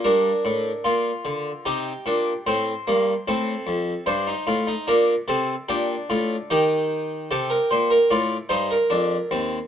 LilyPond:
<<
  \new Staff \with { instrumentName = "Harpsichord" } { \time 4/4 \key g \minor \tempo 4 = 74 << { bes'2 g'4 c''4 | a'4 c''4 bes'8 a'8 g'8 f'8 | g'4 a'16 bes'16 c''16 bes'16 d''8 c''16 bes'4~ bes'16 | } \\ { d'4 f'4 ees'8 d'8 c'8 bes8 | c'4 d'16 ees'16 f'16 ees'16 d'8 c'8 d'4 | ees'4 g'4 f'8 ees'8 d'8 c'8 | } >> }
  \new Staff \with { instrumentName = "Harpsichord" } { \clef bass \time 4/4 \key g \minor g,8 a,8 bes,8 d8 c8 bes,8 a,8 g,8 | a,8 f,8 g,8 a,8 bes,8 c8 bes,8 a,8 | ees4 c8 bes,8 a,8 g,8 f,8 ees,8 | }
>>